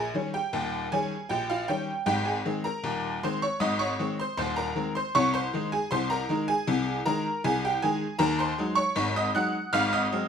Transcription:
Already playing: G#4 G#5
0.14 D#3 G3 C#4
0.34 G4 G5
0.53 D#1 D#2
0.92 D#3 G3 C#4 G#4 G#5
1.29 A#1 A#2 G4 G5
1.50 F4 F5
1.68 D#3 G3 C#4 G4 G5
2.06 G#1 G#2 G4 G5
2.25 G#4 G#5
2.45 D#3 G#3 C4
2.64 A#4 A#5
2.83 D#1 D#2
3.23 D#3 G#3 C4 C5 C6
3.42 C#5 C#6
3.60 G#1 G#2 D#5 D#6
3.79 C#5 C#6
3.99 D#3 G#3 C4
4.20 C5 C6
4.37 D#1 D#2 C5 C6
4.56 A#4 A#5
4.75 D#3 G#3 C4
4.95 C5 C6
5.15 C2 C3 C#5 C#6
5.34 C5 C6
5.54 D#3 G#3 D#4
5.72 G#4 G#5
5.91 C2 C3 C5 C6
6.10 A#4 A#5
6.29 D#3 G#3 D#4
6.48 G#4 G#5
6.67 C2 C3
7.06 D#3 G#3 D#4 A#4 A#5
7.44 C2 C3 G#4 G#5
7.65 G4 G5
7.82 D#3 G#3 D#4 G#4 G#5
8.19 D#2 D#3 A#4 A#5
8.39 C5 C6
8.58 F#3 G#3 D#4
8.75 C#5 C#6
8.96 G#1 G#2
9.16 D#5 D#6
9.35 F#3 G#3 D#4 F#5 F#6
9.73 G#1 G#2 F5 F6
9.93 D#5 D#6
10.12 F#3 G#3 C4

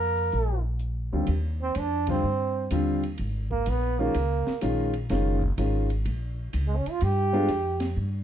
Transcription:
Already playing: F2 A#3 A#4
0.17 open hi-hat
0.32 A#1, open hi-hat
0.79 closed hi-hat
1.13 D2 D#2 D3 G3 C4 F4
1.27 D#2, ride
1.62 C4
1.75 F2, hi-hat pedal, ride
1.79 D4
2.07 D3 G3 C4 F4, kick, ride
2.24 G2
2.71 D#2 D3 G3 C4 F4, hi-hat pedal, ride
3.03 ride
3.18 G#1, ride
3.51 A#3, kick
3.66 A#1 B3, hi-hat pedal, ride
3.99 D#3 G#3 A#3 C#4 F4
4.14 C#2, ride
4.47 muted upright bass stroke, snare
4.61 A#1 D#3 G#3 C#4 F4, hi-hat pedal, ride
4.94 ride
5.09 F#1 D#3 G#3 C#4 F4, snare, ride
5.42 kick
5.58 G#1 D#3 G#3 C#4 F4, hi-hat pedal, ride
5.90 ride
6.05 A#1, ride
6.53 C#2, hi-hat pedal, ride
6.67 G#3
6.77 C#4
6.86 muted upright bass stroke, ride
6.91 F4
7.01 G2 G4, ride
7.33 G#3 B3 D4 F4
7.48 F2, hi-hat pedal, ride
7.80 snare, ride
7.97 G2

